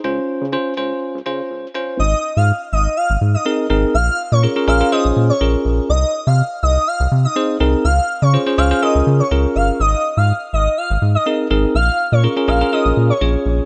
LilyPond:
<<
  \new Staff \with { instrumentName = "Digital synth lead" } { \time 4/4 \key aes \major \tempo 4 = 123 r1 | ees''8 r16 f''16 r8 ees''8 f''16 r8 ees''16 r4 | f''8 r16 des''16 r8 f''8 ees''16 r8 des''16 r4 | ees''8 r16 f''16 r8 ees''8 f''16 r8 ees''16 r4 |
f''8 r16 des''16 r8 f''8 ees''16 r8 des''16 r8 f''16 r16 | ees''8 r16 f''16 r8 ees''8 f''16 r8 ees''16 r4 | f''8 r16 des''16 r8 f''8 ees''16 r8 des''16 r4 | }
  \new Staff \with { instrumentName = "Tine electric piano" } { \time 4/4 \key aes \major <des' f' c''>8. r16 <des' f' c''>8 <des' f' c''>8. r16 <des' f' c''>8. r16 <des' f' c''>8 | r2. <c' ees' aes' bes'>8 <c' ees' aes' bes'>8 | r4 <des' f' aes' bes'>16 <des' f' aes' bes'>16 <des' f' aes' bes'>16 <des' f' aes' bes'>16 <des' f' aes' c''>8. r16 <des' f' aes' bes'>4 | r2. <c' ees' aes' c''>8 <c' ees' aes' bes'>8 |
r4 <des' f' aes' c''>16 <des' f' aes' c''>16 <des' f' aes' c''>16 <des' f' aes' c''>16 <des' f' aes' bes'>8. r16 <des' f' aes' bes'>4 | r2. <c' ees' aes' bes'>8 <c' ees' aes' bes'>8 | r4 <des' f' aes' bes'>16 <des' f' aes' bes'>16 <des' f' aes' bes'>16 <des' f' aes' bes'>16 <des' f' aes' bes'>8. r16 <des' f' aes' des''>4 | }
  \new Staff \with { instrumentName = "Analog synth bass" } { \clef bass \time 4/4 \key aes \major des,8 r16 des8 r16 des,8 r16 des,16 des8 des,8 g,,8 | aes,,8 r16 aes,8 r16 aes,,8 r16 aes,,16 aes,8 r8 aes,,8 | bes,,8 r16 bes,8 r16 bes,,8 r16 bes,,16 bes,8 bes,,8 bes,,8 | c,8 r16 c8 r16 c,8 r16 c,16 c8 r8 c,8 |
des,8 r16 des8 r16 des,8 r16 des,16 des8 des,8 g,,8 | aes,,8 r16 aes,8 r16 aes,,8 r16 aes,,16 aes,8 r8 aes,,8 | bes,,8 r16 bes,8 r16 bes,,8 r16 bes,,16 bes,8 bes,,8 bes,,8 | }
>>